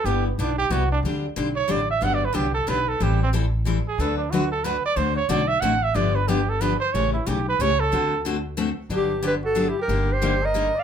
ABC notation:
X:1
M:3/4
L:1/8
Q:"Swing" 1/4=183
K:G
V:1 name="Clarinet"
z6 | z6 | z6 | z6 |
z6 | z6 | z6 | z6 |
z6 | G2 B A- (3A G _B- | _B c2 _e2 =f |]
V:2 name="Trumpet"
G B, D G F D | z3 ^c d e | (3f d B G A B A | G C z3 _A |
A D F A B d | c ^c d e f e | d B G A B c | ^c E G B c A- |
A2 z4 | D2 G F- (3F E G- | G G2 _B2 d |]
V:3 name="Steel-string acoustic guitar"
[G,B,EG] z [G,B,EG] z [G,B,EG] z | [D,G,CDG] z [D,G,CDG] z [D,G,CDG] z | [D,F,B,DG] z [D,F,B,DG] z [D,F,B,DG] z | [E,G,CEA] z [E,G,CEA] z [E,G,CEA] z |
[D,F,A,DFB] z [D,F,A,DFB] z [D,F,A,DFB] z | [D,A,CFA] z [D,A,CFA] z [D,A,CFA] z | [D,=F,B,DG] z [D,F,B,DG] z [D,F,B,DG] z | [^C,E,A,^CG] z [C,E,A,CG] z [C,E,A,CG] z |
[D,A,CFA] z [D,A,CFA] z [D,A,CFA] z | [D,F,B,DG] z [D,F,B,DG] z [D,F,B,DG] z | [D,G,_B,_EG] z [D,G,B,EG] z [D,G,B,EG] z |]
V:4 name="Upright bass" clef=bass
G,,,2 B,,,2 C,,2 | D,,2 B,,,2 A,,,2 | G,,,2 C,,2 B,,,2 | A,,,6 |
D,,6 | D,,2 B,,,2 A,,,2 | G,,,6 | A,,,2 B,,,2 ^C,,2 |
D,,6 | G,,,6 | G,,,6 |]